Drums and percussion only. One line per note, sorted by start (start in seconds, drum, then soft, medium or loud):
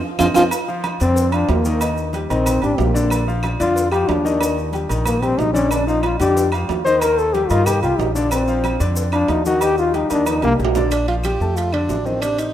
0.19 high bongo medium
0.19 high conga loud
0.19 high timbale loud
0.19 claves loud
0.19 maracas medium
0.34 high bongo loud
0.34 high conga loud
0.34 high timbale loud
0.34 claves loud
0.34 maracas loud
0.51 cowbell medium
0.51 high conga soft
0.51 low agogo loud
0.51 claves medium
0.51 maracas loud
0.68 high conga soft
0.68 maracas soft
0.84 cowbell medium
0.84 high conga loud
0.84 low timbale medium
0.84 low agogo loud
0.84 claves medium
0.84 maracas soft
1.00 cowbell medium
1.00 low agogo medium
1.00 maracas medium
1.16 cowbell loud
1.16 maracas medium
1.32 low agogo loud
1.32 claves medium
1.32 maracas soft
1.49 cowbell medium
1.49 high conga medium
1.49 low timbale medium
1.49 low agogo medium
1.49 maracas soft
1.65 high conga medium
1.65 maracas medium
1.81 cowbell loud
1.81 high conga soft
1.81 low agogo loud
1.81 claves medium
1.81 maracas medium
1.97 high conga soft
1.97 maracas soft
2.13 cowbell medium
2.13 high conga medium
2.13 low timbale medium
2.13 low agogo medium
2.13 maracas soft
2.30 high conga soft
2.30 low agogo medium
2.30 maracas medium
2.46 cowbell loud
2.46 high conga soft
2.46 low conga medium
2.46 low agogo loud
2.46 claves medium
2.46 maracas loud
2.62 high conga soft
2.62 low conga medium
2.62 low agogo medium
2.62 maracas soft
2.78 cowbell medium
2.78 high conga medium
2.78 low timbale medium
2.78 maracas soft
2.95 cowbell medium
2.95 maracas medium
3.10 cowbell loud
3.10 low agogo loud
3.10 claves medium
3.10 maracas loud
3.29 maracas soft
3.43 cowbell medium
3.43 high conga loud
3.43 low timbale medium
3.43 low agogo loud
3.43 claves medium
3.43 maracas soft
3.60 cowbell medium
3.60 low agogo medium
3.60 maracas medium
3.76 cowbell loud
3.76 high conga soft
3.76 maracas loud
3.92 high conga soft
3.92 low agogo loud
3.92 claves medium
3.92 maracas soft
4.09 cowbell medium
4.09 high conga loud
4.09 low timbale medium
4.09 low agogo medium
4.09 maracas soft
4.25 high conga medium
4.25 maracas medium
4.41 cowbell loud
4.41 high conga soft
4.41 low agogo loud
4.41 claves medium
4.41 maracas loud
4.57 high conga soft
4.57 maracas soft
4.73 cowbell medium
4.73 high conga loud
4.73 low timbale medium
4.73 low agogo medium
4.73 maracas soft
4.89 high conga soft
4.89 low agogo medium
4.89 maracas medium
5.05 cowbell loud
5.05 high conga soft
5.05 low conga medium
5.05 low agogo loud
5.05 claves medium
5.05 maracas loud
5.22 high conga soft
5.22 low conga medium
5.22 low agogo medium
5.22 maracas soft
5.38 cowbell medium
5.38 high conga medium
5.38 low timbale medium
5.38 maracas soft
5.55 cowbell medium
5.55 high conga medium
5.55 maracas medium
5.71 cowbell medium
5.71 high conga soft
5.71 low agogo loud
5.71 claves medium
5.71 maracas medium
5.88 maracas soft
6.03 cowbell medium
6.03 high conga loud
6.03 low timbale medium
6.03 low agogo loud
6.03 claves medium
6.03 maracas soft
6.20 cowbell medium
6.20 high conga soft
6.20 low agogo medium
6.20 maracas medium
6.37 cowbell loud
6.37 maracas medium
6.52 low agogo loud
6.52 claves medium
6.52 maracas soft
6.69 cowbell medium
6.69 high conga loud
6.69 low timbale medium
6.69 low agogo medium
6.69 maracas soft
6.87 maracas medium
7.01 cowbell loud
7.01 low agogo loud
7.01 claves medium
7.01 maracas medium
7.18 high conga soft
7.18 maracas soft
7.34 cowbell medium
7.34 high conga loud
7.34 low timbale medium
7.34 low agogo medium
7.34 maracas soft
7.50 low agogo loud
7.50 maracas medium
7.66 cowbell loud
7.66 high conga soft
7.66 low conga medium
7.66 low agogo loud
7.66 claves medium
7.66 maracas loud
7.83 high conga soft
7.83 low conga medium
7.83 low agogo medium
7.83 maracas soft
7.99 cowbell medium
7.99 high conga loud
7.99 low timbale medium
7.99 maracas soft
8.16 cowbell medium
8.16 high conga medium
8.16 maracas medium
8.31 cowbell loud
8.31 high conga soft
8.31 low agogo loud
8.31 claves medium
8.31 maracas medium
8.48 high conga soft
8.48 maracas soft
8.64 cowbell medium
8.64 high conga medium
8.64 low timbale medium
8.64 low agogo loud
8.64 claves medium
8.64 maracas soft
8.80 cowbell medium
8.80 low agogo medium
8.80 maracas medium
8.96 cowbell loud
8.96 maracas loud
9.12 low agogo loud
9.12 claves medium
9.12 maracas soft
9.28 cowbell medium
9.28 high conga medium
9.28 low timbale medium
9.28 low agogo medium
9.28 maracas soft
9.46 high conga medium
9.46 maracas medium
9.61 cowbell loud
9.61 high conga soft
9.61 low agogo loud
9.61 claves medium
9.61 maracas loud
9.78 high conga soft
9.78 maracas soft
9.94 cowbell medium
9.94 high conga loud
9.94 low timbale medium
9.94 low agogo medium
9.94 maracas soft
10.10 high conga soft
10.10 low agogo medium
10.10 maracas medium
10.26 cowbell loud
10.26 high conga medium
10.26 low agogo loud
10.26 claves medium
10.26 maracas medium
10.42 high bongo medium
10.42 high timbale medium
10.42 low agogo medium
10.42 maracas soft
10.59 cowbell medium
10.59 high bongo medium
10.59 maracas soft
10.65 low timbale loud
10.75 cowbell medium
10.75 low bongo medium
10.75 low conga medium
10.75 low timbale medium
10.75 maracas medium
10.91 high bongo medium
10.91 high timbale loud
10.91 claves medium
10.91 maracas medium
11.08 high conga soft
11.08 high timbale medium
11.24 high bongo medium
11.24 high conga loud
11.24 high timbale medium
11.24 claves medium
11.24 maracas medium
11.41 high bongo soft
11.41 high conga soft
11.41 maracas soft
11.57 high bongo medium
11.57 high timbale medium
11.57 maracas medium
11.73 high bongo soft
11.73 high timbale medium
11.73 claves medium
11.89 high bongo medium
11.89 low bongo medium
11.89 high conga medium
11.89 low timbale medium
11.89 maracas medium
12.06 high bongo soft
12.06 high conga medium
12.06 maracas soft
12.22 high bongo medium
12.22 high conga soft
12.22 high timbale loud
12.22 claves medium
12.22 maracas medium
12.39 high bongo soft
12.39 high conga soft
12.39 high timbale medium
12.39 maracas medium